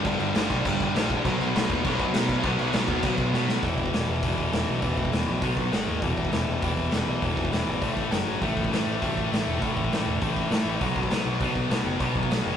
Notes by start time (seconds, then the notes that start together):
Already playing: B3
0.05 G1 G2 D3 G3, kick, crash
0.20 G1, crash
0.35 G1 G2 D3 G3, snare, crash
0.50 B1, kick, crash
0.65 G1 G2 D3 G3, kick, crash
0.80 G1, kick, crash
0.95 A#1 G2 D3 G3, snare, crash
1.10 kick, crash
1.24 B1 B2 F#3 B3, kick, crash
1.40 B1, crash
1.55 B1 B2 F#3 B3, snare, crash
1.70 D#2, kick, crash
1.84 B1 B2 F#3 B3, kick, crash
1.89 B3
2.00 B1, kick, crash
2.14 B2 F#3 B3, snare, crash
2.29 kick, crash
2.44 B1 B2 F#3 B3, kick, crash
2.59 B1, crash
2.73 B1 B2 F#3 B3, snare, crash
2.87 D#2, kick, crash
3.03 B1 B2 F#3 B3, kick, crash
3.17 B1, kick, crash
3.34 B2 F#3 B3, snare
3.49 snare
3.63 E1 E2 B2 E3, kick, open hi-hat
3.78 E1, kick
3.86 kick
3.93 E1 E2 B2 E3, snare, open hi-hat
4.08 E1
4.22 E1 E2 B2 E3, kick, open hi-hat
4.37 E1, kick
4.52 E1 E2 B2 E3, snare, open hi-hat
4.69 B1
4.81 E1 E2 B2 E3, kick, open hi-hat
4.97 E1, kick
5.05 kick
5.12 E1 E2 B2 E3, snare, open hi-hat
5.27 A#1
5.42 B1 B2 F#3 B3, kick, open hi-hat
5.57 B1, kick
5.72 G#1 G#2 D#3 G#3, snare, open hi-hat
5.88 D#2
6.01 E1 E2 B2 E3, kick, open hi-hat
6.16 E1, kick
6.25 kick
6.32 E1 E2 B2 E3, snare, open hi-hat
6.47 E1
6.62 E1 E2 B2 E3, kick, open hi-hat
6.77 E1, kick
6.91 E1 E2 B2 E3, snare, open hi-hat
7.08 B1
7.22 E1 E2 B2 E3, kick, open hi-hat
7.37 E1, kick
7.45 kick
7.51 E1 E2 B2 E3, snare, open hi-hat
7.67 G#1
7.82 A1 A2 E3 A3, kick, open hi-hat
7.96 A1, kick
8.10 F#1 F#2 C#3 F#3, snare, open hi-hat
8.25 G#1
8.42 A1 A2 E3 A3, kick, open hi-hat
8.57 A1, kick
8.65 kick
8.71 A1 A2 E3 A3, snare, open hi-hat
8.86 A1
9.02 A1 A2 E3 A3, kick, open hi-hat
9.17 A1, kick
9.31 A1 A2 E3 A3, snare, open hi-hat
9.46 E1
9.61 A1 A2 E3 A3, kick, open hi-hat
9.77 A1, kick
9.84 kick
9.91 A1 A2 E3 A3, snare, open hi-hat
10.06 E1
10.22 A1 A2 E3 A3, kick, open hi-hat
10.36 A1, kick
10.51 A2 E3 A3, snare, open hi-hat
10.65 A1
10.81 B1 B2 F#3 B3, kick, open hi-hat
10.95 B1, kick
11.03 kick
11.11 B1 B2 F#3 B3, snare, open hi-hat
11.26 B1
11.40 B1 B2 F#3 B3, kick, open hi-hat
11.55 B1, kick
11.70 B1 B2 F#3 B3, snare, open hi-hat
11.84 F#1
12.00 B1 B2 F#3 B3, kick, open hi-hat
12.15 B1, kick
12.23 kick
12.31 B1 B2 F#3 B3, snare, open hi-hat
12.45 F#1